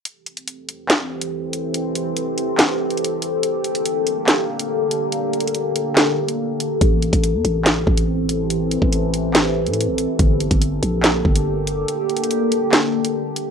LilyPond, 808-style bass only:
\new Staff \with { instrumentName = "808-style bass" } { \clef bass \time 4/4 \key a \phrygian \tempo 4 = 142 r1 | r1 | r1 | r1 |
a,,8. a,,8 e,16 a,,4 a,,4.~ | a,,8. a,,2 a,8 a,,8 r16 | g,,8. g,,8. bes,,4 g,,4. | r1 | }